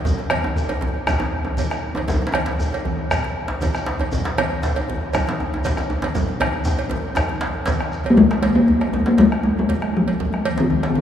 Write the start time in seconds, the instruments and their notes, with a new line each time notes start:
0.05 bombo low, djembe slap, djembe tone, high conga, djembe bass, low conga, shekere
0.18 bombo rim, djembe slap, high conga
0.30 bombo rim, cowbell, high conga
0.44 high conga, djembe tone
0.56 bombo low, djembe tone, high conga, shekere
0.69 cowbell, djembe slap, djembe tone
0.81 djembe slap, djembe tone, high conga, djembe bass
1.07 bombo rim, bombo low, cowbell, djembe tone, low conga, shekere
1.20 djembe slap, high conga, djembe tone
1.45 djembe slap, djembe tone, high conga, djembe bass
1.57 bombo low, cowbell, djembe slap, high conga, djembe tone, shekere
1.71 bombo rim, djembe slap, shekere
1.82 djembe slap, high conga
1.95 cowbell, djembe slap, djembe tone, high conga
2.08 bombo low, djembe slap, high conga, djembe tone, low conga, djembe bass, shekere
2.14 djembe tone
2.21 bombo rim, djembe slap, high conga
2.27 djembe slap
2.32 bombo rim, cowbell, djembe tone, high conga
2.46 djembe slap, high conga
2.59 bombo low, high conga, djembe tone, shekere
2.73 cowbell, djembe slap
2.85 djembe slap, high conga, djembe bass
3.11 bombo rim, bombo low, cowbell, djembe tone, low conga, shekere
3.24 djembe slap, high conga
3.48 djembe slap, high conga, djembe bass
3.61 bombo low, cowbell, djembe slap, djembe tone, high conga, shekere
3.74 bombo rim, djembe slap, shekere
3.86 djembe slap, high conga
3.88 djembe slap
3.99 cowbell, djembe slap, djembe tone, high conga
4.12 bombo low, djembe slap, djembe tone, high conga, djembe bass, low conga, shekere
4.24 bombo rim, djembe slap, high conga
4.38 bombo rim, cowbell, high conga, djembe tone
4.52 high conga
4.62 bombo low, djembe slap, djembe tone, high conga, shekere
4.76 cowbell, djembe slap, djembe tone
4.88 djembe slap, high conga, djembe bass
5.13 bombo rim, bombo low, cowbell, djembe tone, low conga, shekere
5.27 djembe slap, high conga
5.40 djembe tone
5.53 djembe slap, high conga, djembe tone, djembe bass
5.64 bombo low, cowbell, djembe slap, djembe tone, high conga, shekere
5.77 bombo rim, djembe slap, djembe tone, shekere
5.90 djembe slap, djembe tone, high conga
6.02 cowbell, djembe slap, high conga
6.15 bombo rim, bombo low, djembe tone, low conga, djembe bass, shekere
6.28 bombo rim, djembe slap
6.40 bombo rim, cowbell, high conga, djembe tone
6.53 high conga
6.65 bombo rim, bombo low, djembe slap, djembe tone, shekere
6.78 cowbell, djembe slap
6.89 djembe tone, high conga, djembe bass
7.15 bombo rim, bombo low, cowbell, djembe tone, high conga, low conga, shekere
7.29 djembe slap, high conga
7.41 bombo rim, djembe slap
7.55 djembe bass
7.66 bombo low, cowbell, djembe slap, high conga, djembe tone, shekere
7.80 bombo rim, djembe slap, high conga
7.92 shekere
8.04 cowbell, djembe slap, high conga
8.10 talking drum A#3
8.17 talking drum G#3, bombo low, djembe tone, low conga, djembe bass
8.31 bombo rim, djembe slap
8.43 cowbell, djembe slap, high conga
8.55 talking drum A#3, djembe tone
8.68 bombo rim, bombo low, djembe tone, high conga
8.81 bombo rim, cowbell, djembe slap, high conga
8.93 bombo rim, djembe tone, high conga, djembe bass, low conga
9.06 talking drum A#3, djembe slap, djembe tone, high conga
9.18 talking drum G#3, bombo low, cowbell, djembe slap, high conga
9.32 bombo rim, djembe slap
9.43 bombo rim, djembe tone
9.57 talking drum G#3, djembe tone, djembe bass, low conga
9.69 bombo low, cowbell, djembe slap, high conga
9.82 bombo rim, djembe slap, high conga
9.95 talking drum F3, high conga
10.07 cowbell, djembe tone, high conga
10.20 bombo low, low conga, djembe bass
10.33 bombo rim, djembe slap
10.45 cowbell, high conga
10.58 talking drum D#3, djembe slap, djembe tone
10.70 bombo rim, bombo low, djembe tone, high conga
10.83 bombo rim, cowbell, djembe slap, high conga
10.90 talking drum D#3
10.95 talking drum C#3, bombo rim, high conga, low conga, djembe bass